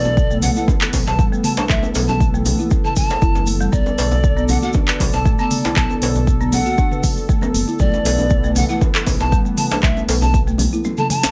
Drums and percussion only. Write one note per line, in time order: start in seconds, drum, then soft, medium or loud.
0.04 djembe tone medium
0.04 high conga medium
0.04 djembe bass medium
0.04 shaker soft
0.17 kick loud
0.17 high conga medium
0.17 shaker medium
0.30 muted conga soft
0.30 shaker soft
0.42 open hi-hat medium
0.42 mid tom medium
0.42 high conga loud
0.42 low conga loud
0.42 djembe bass medium
0.42 shaker loud
0.56 shaker soft
0.68 kick loud
0.68 muted conga medium
0.68 djembe tone loud
0.68 low conga medium
0.68 shaker medium
0.81 clap loud
0.81 shaker soft
0.93 kick medium
0.93 open hi-hat loud
0.93 djembe slap loud
0.93 high conga medium
0.93 low conga loud
0.93 shaker loud
1.07 muted conga soft
1.07 djembe slap medium
1.07 shaker soft
1.19 kick loud
1.19 shaker medium
1.33 shaker soft
1.44 open hi-hat medium
1.44 mid tom medium
1.44 muted conga medium
1.44 high conga medium
1.44 shaker loud
1.57 djembe slap loud
1.57 shaker soft
1.69 kick loud
1.69 clap medium
1.69 low conga medium
1.69 shaker medium
1.83 muted conga soft
1.83 djembe tone medium
1.83 shaker soft
1.95 open hi-hat medium
1.95 djembe slap loud
1.95 shaker loud
2.08 high conga medium
2.08 djembe tone medium
2.08 djembe bass medium
2.08 shaker soft
2.20 kick loud
2.20 high conga medium
2.20 shaker medium
2.34 muted conga soft
2.34 shaker soft
2.45 open hi-hat medium
2.45 mid tom medium
2.45 high conga loud
2.45 low conga loud
2.45 djembe bass loud
2.45 shaker loud
2.60 shaker soft
2.71 kick loud
2.71 muted conga medium
2.71 high conga medium
2.71 shaker soft
2.85 mid tom medium
2.85 shaker soft
2.96 kick medium
2.96 open hi-hat medium
2.96 mid tom medium
2.96 high conga medium
2.96 low conga medium
2.96 shaker loud
3.10 muted conga soft
3.10 djembe slap medium
3.10 shaker soft
3.22 kick loud
3.22 shaker medium
3.35 djembe tone medium
3.35 high conga medium
3.35 low conga medium
3.35 shaker soft
3.46 open hi-hat medium
3.46 muted conga soft
3.46 shaker loud
3.61 shaker soft
3.73 kick loud
3.73 low conga medium
3.73 shaker medium
3.86 muted conga medium
3.86 djembe tone medium
3.86 shaker soft
3.98 open hi-hat medium
3.98 djembe slap loud
3.98 shaker medium
4.11 djembe tone medium
4.11 high conga medium
4.11 djembe bass medium
4.11 shaker soft
4.24 kick loud
4.24 high conga medium
4.24 shaker medium
4.37 muted conga soft
4.37 shaker soft
4.48 open hi-hat medium
4.48 mid tom medium
4.48 high conga loud
4.48 djembe bass medium
4.48 low conga loud
4.48 shaker medium
4.62 shaker soft
4.73 kick loud
4.73 muted conga medium
4.73 djembe tone medium
4.73 low conga medium
4.73 shaker medium
4.88 clap loud
4.88 shaker soft
5.00 kick medium
5.00 open hi-hat medium
5.00 djembe slap loud
5.00 high conga medium
5.00 low conga medium
5.00 shaker medium
5.13 djembe slap medium
5.13 muted conga soft
5.13 shaker soft
5.25 kick loud
5.25 shaker medium
5.39 shaker soft
5.51 open hi-hat medium
5.51 mid tom medium
5.51 muted conga soft
5.51 high conga medium
5.51 shaker medium
5.65 djembe slap loud
5.65 shaker soft
5.76 kick loud
5.76 clap medium
5.76 low conga medium
5.76 shaker medium
5.90 muted conga medium
5.90 djembe tone medium
5.90 shaker soft
6.02 open hi-hat medium
6.02 djembe slap loud
6.02 shaker medium
6.15 high conga medium
6.15 djembe tone medium
6.15 djembe bass medium
6.15 shaker soft
6.27 kick loud
6.27 high conga medium
6.27 shaker medium
6.41 muted conga soft
6.41 shaker soft
6.52 open hi-hat medium
6.52 high conga medium
6.52 low conga loud
6.52 djembe bass loud
6.52 shaker medium
6.66 shaker soft
6.78 kick loud
6.78 muted conga medium
6.78 high conga medium
6.78 shaker soft
6.92 mid tom loud
6.92 shaker soft
7.03 kick medium
7.03 open hi-hat medium
7.03 mid tom medium
7.03 high conga medium
7.03 low conga medium
7.03 shaker loud
7.17 muted conga soft
7.17 shaker soft
7.29 kick loud
7.29 shaker soft
7.41 high conga medium
7.41 djembe tone medium
7.41 low conga medium
7.41 shaker soft
7.54 open hi-hat medium
7.54 muted conga medium
7.54 shaker medium
7.68 shaker soft
7.79 kick loud
7.79 low conga loud
7.79 shaker medium
7.92 muted conga medium
7.92 djembe tone medium
7.92 shaker soft
8.05 open hi-hat medium
8.05 djembe slap medium
8.05 shaker medium
8.18 high conga medium
8.18 djembe tone medium
8.18 djembe bass medium
8.18 shaker soft
8.30 kick loud
8.30 high conga medium
8.30 shaker medium
8.44 muted conga soft
8.44 shaker soft
8.55 open hi-hat medium
8.55 mid tom medium
8.55 high conga medium
8.55 low conga medium
8.55 djembe bass medium
8.55 shaker medium
8.69 shaker soft
8.81 kick loud
8.81 muted conga medium
8.81 djembe tone medium
8.81 low conga medium
8.81 shaker medium
8.95 clap medium
8.95 shaker soft
9.06 kick medium
9.06 open hi-hat medium
9.06 djembe slap loud
9.06 high conga medium
9.06 low conga medium
9.06 shaker medium
9.20 muted conga soft
9.20 djembe slap medium
9.20 shaker soft
9.32 kick loud
9.32 shaker medium
9.45 shaker soft
9.57 open hi-hat medium
9.57 mid tom loud
9.57 muted conga medium
9.57 high conga medium
9.57 shaker medium
9.71 djembe slap loud
9.71 shaker soft
9.83 kick loud
9.83 clap medium
9.83 low conga loud
9.83 shaker soft
9.97 muted conga soft
9.97 djembe tone medium
9.97 shaker soft
10.09 open hi-hat medium
10.09 djembe slap loud
10.09 shaker medium
10.22 djembe tone medium
10.22 high conga medium
10.22 djembe bass loud
10.22 shaker soft
10.33 kick loud
10.33 high conga medium
10.33 shaker medium
10.48 muted conga soft
10.48 shaker soft
10.58 open hi-hat medium
10.58 high conga loud
10.58 djembe bass loud
10.58 low conga loud
10.58 shaker medium
10.73 shaker soft
10.85 high tom medium
10.85 muted conga medium
10.85 high conga medium
10.85 shaker soft
10.97 mid tom loud
10.97 high tom medium
10.97 shaker soft
11.10 open hi-hat loud
11.10 mid tom loud
11.10 high conga medium
11.10 low conga loud
11.10 shaker medium
11.23 snare medium
11.23 muted conga soft
11.23 djembe slap medium
11.23 shaker soft